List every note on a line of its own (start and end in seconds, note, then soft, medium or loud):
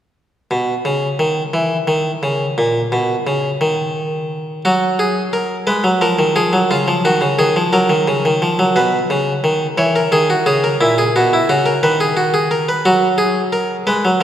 0.51 0.73 B2 medium
0.85 1.07 C#3 medium
1.19 1.41 D#3 medium
1.54 1.75 E3 medium
1.88 2.09 D#3 medium
2.23 2.45 C#3 medium
2.58 2.79 A#2 medium
2.92 3.14 B2 medium
3.27 3.48 C#3 medium
3.61 4.62 D#3 medium
4.65 5.65 F#3 medium
4.65 4.86 F#4 medium
4.99 5.21 G#4 medium
5.33 5.55 A#4 medium
5.67 5.84 G#3 medium
5.67 5.88 B4 medium
5.84 6.01 F#3 medium
6.01 6.18 F3 medium
6.01 6.23 A#4 medium
6.19 6.35 D#3 medium
6.36 6.52 F3 medium
6.36 6.57 G#4 medium
6.53 6.70 F#3 medium
6.71 6.87 C#3 medium
6.71 6.92 F4 medium
6.88 7.04 F3 medium
7.05 7.21 D#3 medium
7.05 7.26 F#4 medium
7.21 7.38 C#3 medium
7.39 7.55 D#3 medium
7.39 7.60 G#4 medium
7.56 7.72 F3 medium
7.73 7.89 F#3 medium
7.73 8.72 A#4 medium
7.89 8.06 D#3 medium
8.08 8.24 C#3 medium
8.25 8.41 D#3 medium
8.42 8.58 F3 medium
8.59 8.75 F#3 medium
8.76 8.97 B2 medium
8.76 9.75 B4 medium
9.10 9.31 C#3 medium
9.44 9.65 D#3 medium
9.78 9.99 E3 medium
9.78 9.94 C#5 medium
9.96 10.12 A#4 medium
10.12 10.33 D#3 medium
10.12 10.28 G#4 medium
10.30 10.46 F#4 medium
10.46 10.67 C#3 medium
10.46 10.62 G#4 medium
10.64 10.80 A#4 medium
10.81 11.02 A#2 loud
10.81 10.97 E4 medium
10.98 11.14 G#4 medium
11.16 11.37 B2 medium
11.16 11.32 F#4 medium
11.33 11.49 E4 medium
11.49 11.70 C#3 medium
11.49 11.65 F#4 medium
11.66 11.82 A#4 medium
11.83 12.83 D#3 medium
11.83 11.99 B4 medium
12.00 12.17 G#4 medium
12.17 12.33 F#4 medium
12.34 12.51 G#4 medium
12.51 12.68 A#4 medium
12.69 12.85 B4 medium
12.85 13.85 F#3 medium
12.85 13.07 F#4 medium
13.18 13.40 G#4 medium
13.53 13.74 A#4 medium
13.87 14.04 G#3 medium
13.87 14.09 B4 medium
14.05 14.22 F#3 medium